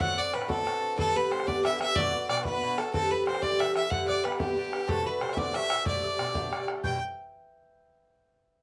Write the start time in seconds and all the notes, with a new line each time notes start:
Already playing: A4 C5 D5 E5
0.00 A2 D3 C4 F#4 F#5 F#6, bodhran
0.16 D3 C4 F#4 D5 D6, bodhran
0.33 A2 D3 C4 F#4 B4 B5, bodhran
0.42 bodhran
0.48 A2 D3 C4 F#4 A4 B5, bodhran
0.54 A5
0.65 A2 D3 C4 F#4, bodhran
0.81 D3 C4 F#4
0.96 G2 D3 B3 G4 A4 A5, bodhran
1.15 D3 B3 G4 B4 B5, bodhran
1.30 G2 D3 B3 G4 C5 C6, bodhran
1.40 bodhran
1.46 G2 D3 B3 G4 D5 D6, bodhran
1.64 G2 D3 B3 G4 E5 E6, bodhran
1.79 D3 B3 G4 E5 E6, bodhran
1.96 B2 D3 B3 F#4 D5 E6, bodhran
2.01 D6
2.14 D3 B3 F#4, bodhran
2.28 B2 D3 B3 F#4 D5 D6, bodhran
2.37 bodhran
2.45 B2 D3 B3 F#4 B4 B5, bodhran
2.62 B2 D3 B3 F#4
2.77 D3 B3 F#4 A4 A5, bodhran
2.93 G2 E3 C4 G4 A4 A5, bodhran
3.11 E3 C4 G4 B4 B5, bodhran
3.26 G2 E3 C4 G4 C5 C6, bodhran
3.35 bodhran
3.41 G2 E3 C4 G4 D5 D6, bodhran
3.60 G2 E3 C4 G4 E5 E6, bodhran
3.74 E3 C4 G4 E5 E6, bodhran
3.90 G2 D3 B3 G4 F#5 F#6, bodhran
4.08 D3 B3 G4 D5 D6, bodhran
4.23 G2 D3 B3 G4 B4 B5, bodhran
4.32 bodhran
4.40 G2 D3 B3 G4 A5, bodhran
4.44 G5
4.56 G2 D3 B3 G4
4.72 D3 B3 G4, bodhran
4.87 C3 D3 A3 F#4 A4 A5, bodhran
5.05 D3 A3 F#4 B4 B5, bodhran
5.20 C3 D3 A3 F#4 C5 C6, bodhran
5.29 E5, bodhran
5.37 C3 D3 A3 F#4 D5 D6, bodhran
5.53 C3 D3 A3 F#4 E5, bodhran
5.70 D3 A3 F#4 E6, bodhran
5.85 B2 D3 A3 G4 D5 D6, bodhran
6.03 D3 A3 G4 E6, bodhran
6.07 D6
6.18 B2 D3 A3 G4 C6, bodhran
6.24 D6
6.34 B2 D3 A3 G4, bodhran
6.52 B2 D3 A3 G4, bodhran
6.68 D3 A3 G4, bodhran
6.84 B2 D3 A3 G4 G5 G6, bodhran